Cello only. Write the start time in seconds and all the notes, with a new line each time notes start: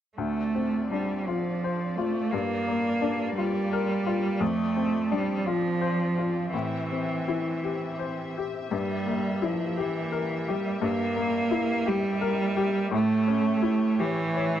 0.17 A3
0.91 G3
1.28 F3
1.97 A3
2.31 A#3
3.35 G3
4.40 A3
5.12 G3
5.47 F3
6.53 E3
8.73 G3
9.44 F3
9.80 E3
10.50 G3
10.83 A#3
11.88 G3
12.93 A3
14.00 E3